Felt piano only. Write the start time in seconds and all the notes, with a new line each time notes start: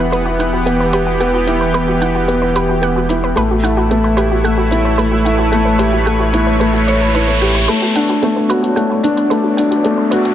Already playing: B3 E4 G4
0.12 B3
0.39 E4
0.66 B3
0.93 G4
1.20 B3
1.47 E4
1.74 B3
2.01 E4
2.28 B3
2.55 G4
2.82 B3
3.09 E4
3.36 A3
3.63 E4
3.91 A3
4.17 G4
4.44 A3
4.71 E4
4.98 A3
5.25 E4
5.52 A3
5.79 G4
6.06 A3
6.33 E4
6.61 A3
6.88 C#5
7.15 E4
7.42 G4
7.68 A3
7.95 D4
8.22 A3
8.49 F#4
8.76 A3
9.04 D4
9.31 A3
9.59 D4
9.85 A3
10.13 F#4